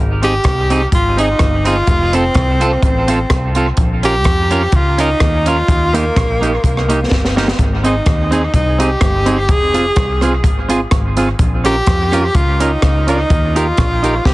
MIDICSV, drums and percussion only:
0, 0, Header, 1, 2, 480
1, 0, Start_track
1, 0, Key_signature, -4, "major"
1, 0, Tempo, 475813
1, 1893, Time_signature, 4, 2, 24, 8
1, 14464, End_track
2, 0, Start_track
2, 0, Title_t, "Drums"
2, 229, Note_on_c, 9, 42, 76
2, 330, Note_off_c, 9, 42, 0
2, 442, Note_on_c, 9, 42, 73
2, 451, Note_on_c, 9, 36, 104
2, 452, Note_on_c, 9, 37, 103
2, 543, Note_off_c, 9, 42, 0
2, 552, Note_off_c, 9, 36, 0
2, 553, Note_off_c, 9, 37, 0
2, 710, Note_on_c, 9, 42, 72
2, 811, Note_off_c, 9, 42, 0
2, 930, Note_on_c, 9, 36, 104
2, 931, Note_on_c, 9, 42, 69
2, 1030, Note_off_c, 9, 36, 0
2, 1031, Note_off_c, 9, 42, 0
2, 1195, Note_on_c, 9, 42, 92
2, 1296, Note_off_c, 9, 42, 0
2, 1405, Note_on_c, 9, 37, 104
2, 1405, Note_on_c, 9, 42, 72
2, 1413, Note_on_c, 9, 36, 97
2, 1506, Note_off_c, 9, 37, 0
2, 1506, Note_off_c, 9, 42, 0
2, 1513, Note_off_c, 9, 36, 0
2, 1667, Note_on_c, 9, 42, 80
2, 1768, Note_off_c, 9, 42, 0
2, 1888, Note_on_c, 9, 42, 71
2, 1891, Note_on_c, 9, 36, 97
2, 1989, Note_off_c, 9, 42, 0
2, 1992, Note_off_c, 9, 36, 0
2, 2150, Note_on_c, 9, 42, 82
2, 2251, Note_off_c, 9, 42, 0
2, 2365, Note_on_c, 9, 42, 75
2, 2372, Note_on_c, 9, 36, 112
2, 2375, Note_on_c, 9, 37, 105
2, 2466, Note_off_c, 9, 42, 0
2, 2473, Note_off_c, 9, 36, 0
2, 2476, Note_off_c, 9, 37, 0
2, 2632, Note_on_c, 9, 42, 79
2, 2733, Note_off_c, 9, 42, 0
2, 2850, Note_on_c, 9, 36, 108
2, 2852, Note_on_c, 9, 42, 71
2, 2951, Note_off_c, 9, 36, 0
2, 2953, Note_off_c, 9, 42, 0
2, 3108, Note_on_c, 9, 42, 96
2, 3208, Note_off_c, 9, 42, 0
2, 3328, Note_on_c, 9, 37, 116
2, 3329, Note_on_c, 9, 42, 76
2, 3332, Note_on_c, 9, 36, 97
2, 3429, Note_off_c, 9, 37, 0
2, 3430, Note_off_c, 9, 42, 0
2, 3433, Note_off_c, 9, 36, 0
2, 3581, Note_on_c, 9, 42, 70
2, 3682, Note_off_c, 9, 42, 0
2, 3801, Note_on_c, 9, 42, 81
2, 3808, Note_on_c, 9, 36, 110
2, 3902, Note_off_c, 9, 42, 0
2, 3909, Note_off_c, 9, 36, 0
2, 4068, Note_on_c, 9, 42, 90
2, 4169, Note_off_c, 9, 42, 0
2, 4280, Note_on_c, 9, 42, 81
2, 4290, Note_on_c, 9, 36, 103
2, 4290, Note_on_c, 9, 37, 110
2, 4381, Note_off_c, 9, 42, 0
2, 4391, Note_off_c, 9, 36, 0
2, 4391, Note_off_c, 9, 37, 0
2, 4547, Note_on_c, 9, 42, 69
2, 4648, Note_off_c, 9, 42, 0
2, 4762, Note_on_c, 9, 42, 73
2, 4767, Note_on_c, 9, 36, 109
2, 4863, Note_off_c, 9, 42, 0
2, 4868, Note_off_c, 9, 36, 0
2, 5029, Note_on_c, 9, 42, 99
2, 5130, Note_off_c, 9, 42, 0
2, 5249, Note_on_c, 9, 37, 122
2, 5249, Note_on_c, 9, 42, 76
2, 5253, Note_on_c, 9, 36, 104
2, 5350, Note_off_c, 9, 37, 0
2, 5350, Note_off_c, 9, 42, 0
2, 5353, Note_off_c, 9, 36, 0
2, 5508, Note_on_c, 9, 42, 80
2, 5609, Note_off_c, 9, 42, 0
2, 5734, Note_on_c, 9, 36, 107
2, 5738, Note_on_c, 9, 42, 73
2, 5835, Note_off_c, 9, 36, 0
2, 5839, Note_off_c, 9, 42, 0
2, 5997, Note_on_c, 9, 42, 82
2, 6098, Note_off_c, 9, 42, 0
2, 6218, Note_on_c, 9, 42, 76
2, 6219, Note_on_c, 9, 36, 124
2, 6228, Note_on_c, 9, 37, 111
2, 6319, Note_off_c, 9, 36, 0
2, 6319, Note_off_c, 9, 42, 0
2, 6329, Note_off_c, 9, 37, 0
2, 6485, Note_on_c, 9, 42, 74
2, 6586, Note_off_c, 9, 42, 0
2, 6696, Note_on_c, 9, 36, 100
2, 6704, Note_on_c, 9, 42, 66
2, 6797, Note_off_c, 9, 36, 0
2, 6805, Note_off_c, 9, 42, 0
2, 6833, Note_on_c, 9, 37, 61
2, 6934, Note_off_c, 9, 37, 0
2, 6957, Note_on_c, 9, 42, 101
2, 7058, Note_off_c, 9, 42, 0
2, 7177, Note_on_c, 9, 36, 96
2, 7178, Note_on_c, 9, 38, 59
2, 7278, Note_off_c, 9, 36, 0
2, 7279, Note_off_c, 9, 38, 0
2, 7310, Note_on_c, 9, 38, 52
2, 7411, Note_off_c, 9, 38, 0
2, 7436, Note_on_c, 9, 38, 80
2, 7537, Note_off_c, 9, 38, 0
2, 7546, Note_on_c, 9, 38, 93
2, 7646, Note_off_c, 9, 38, 0
2, 7655, Note_on_c, 9, 36, 111
2, 7655, Note_on_c, 9, 42, 72
2, 7756, Note_off_c, 9, 36, 0
2, 7756, Note_off_c, 9, 42, 0
2, 7914, Note_on_c, 9, 42, 83
2, 8014, Note_off_c, 9, 42, 0
2, 8129, Note_on_c, 9, 42, 76
2, 8134, Note_on_c, 9, 36, 124
2, 8139, Note_on_c, 9, 37, 105
2, 8230, Note_off_c, 9, 42, 0
2, 8235, Note_off_c, 9, 36, 0
2, 8240, Note_off_c, 9, 37, 0
2, 8392, Note_on_c, 9, 42, 72
2, 8493, Note_off_c, 9, 42, 0
2, 8612, Note_on_c, 9, 36, 106
2, 8616, Note_on_c, 9, 42, 69
2, 8712, Note_off_c, 9, 36, 0
2, 8717, Note_off_c, 9, 42, 0
2, 8876, Note_on_c, 9, 42, 102
2, 8977, Note_off_c, 9, 42, 0
2, 9088, Note_on_c, 9, 37, 120
2, 9089, Note_on_c, 9, 42, 76
2, 9093, Note_on_c, 9, 36, 97
2, 9189, Note_off_c, 9, 37, 0
2, 9190, Note_off_c, 9, 42, 0
2, 9194, Note_off_c, 9, 36, 0
2, 9344, Note_on_c, 9, 42, 85
2, 9445, Note_off_c, 9, 42, 0
2, 9569, Note_on_c, 9, 42, 74
2, 9572, Note_on_c, 9, 36, 114
2, 9670, Note_off_c, 9, 42, 0
2, 9672, Note_off_c, 9, 36, 0
2, 9830, Note_on_c, 9, 42, 80
2, 9931, Note_off_c, 9, 42, 0
2, 10047, Note_on_c, 9, 42, 80
2, 10053, Note_on_c, 9, 36, 116
2, 10057, Note_on_c, 9, 37, 117
2, 10148, Note_off_c, 9, 42, 0
2, 10154, Note_off_c, 9, 36, 0
2, 10158, Note_off_c, 9, 37, 0
2, 10303, Note_on_c, 9, 37, 58
2, 10311, Note_on_c, 9, 42, 70
2, 10403, Note_off_c, 9, 37, 0
2, 10412, Note_off_c, 9, 42, 0
2, 10530, Note_on_c, 9, 36, 109
2, 10531, Note_on_c, 9, 42, 74
2, 10631, Note_off_c, 9, 36, 0
2, 10632, Note_off_c, 9, 42, 0
2, 10790, Note_on_c, 9, 42, 100
2, 10890, Note_off_c, 9, 42, 0
2, 11008, Note_on_c, 9, 37, 113
2, 11008, Note_on_c, 9, 42, 73
2, 11013, Note_on_c, 9, 36, 106
2, 11109, Note_off_c, 9, 37, 0
2, 11109, Note_off_c, 9, 42, 0
2, 11114, Note_off_c, 9, 36, 0
2, 11265, Note_on_c, 9, 42, 82
2, 11366, Note_off_c, 9, 42, 0
2, 11490, Note_on_c, 9, 42, 69
2, 11492, Note_on_c, 9, 36, 118
2, 11591, Note_off_c, 9, 42, 0
2, 11593, Note_off_c, 9, 36, 0
2, 11749, Note_on_c, 9, 42, 80
2, 11850, Note_off_c, 9, 42, 0
2, 11968, Note_on_c, 9, 42, 69
2, 11975, Note_on_c, 9, 36, 108
2, 11978, Note_on_c, 9, 37, 109
2, 12069, Note_off_c, 9, 42, 0
2, 12076, Note_off_c, 9, 36, 0
2, 12079, Note_off_c, 9, 37, 0
2, 12228, Note_on_c, 9, 37, 65
2, 12236, Note_on_c, 9, 42, 72
2, 12329, Note_off_c, 9, 37, 0
2, 12337, Note_off_c, 9, 42, 0
2, 12454, Note_on_c, 9, 42, 72
2, 12455, Note_on_c, 9, 36, 107
2, 12555, Note_off_c, 9, 42, 0
2, 12556, Note_off_c, 9, 36, 0
2, 12715, Note_on_c, 9, 42, 100
2, 12816, Note_off_c, 9, 42, 0
2, 12936, Note_on_c, 9, 37, 110
2, 12936, Note_on_c, 9, 42, 78
2, 12939, Note_on_c, 9, 36, 91
2, 13037, Note_off_c, 9, 37, 0
2, 13037, Note_off_c, 9, 42, 0
2, 13040, Note_off_c, 9, 36, 0
2, 13193, Note_on_c, 9, 42, 77
2, 13294, Note_off_c, 9, 42, 0
2, 13419, Note_on_c, 9, 42, 74
2, 13420, Note_on_c, 9, 36, 114
2, 13520, Note_off_c, 9, 42, 0
2, 13521, Note_off_c, 9, 36, 0
2, 13681, Note_on_c, 9, 42, 83
2, 13781, Note_off_c, 9, 42, 0
2, 13895, Note_on_c, 9, 42, 82
2, 13902, Note_on_c, 9, 36, 117
2, 13905, Note_on_c, 9, 37, 101
2, 13995, Note_off_c, 9, 42, 0
2, 14003, Note_off_c, 9, 36, 0
2, 14006, Note_off_c, 9, 37, 0
2, 14160, Note_on_c, 9, 42, 74
2, 14261, Note_off_c, 9, 42, 0
2, 14379, Note_on_c, 9, 36, 96
2, 14381, Note_on_c, 9, 38, 58
2, 14464, Note_off_c, 9, 36, 0
2, 14464, Note_off_c, 9, 38, 0
2, 14464, End_track
0, 0, End_of_file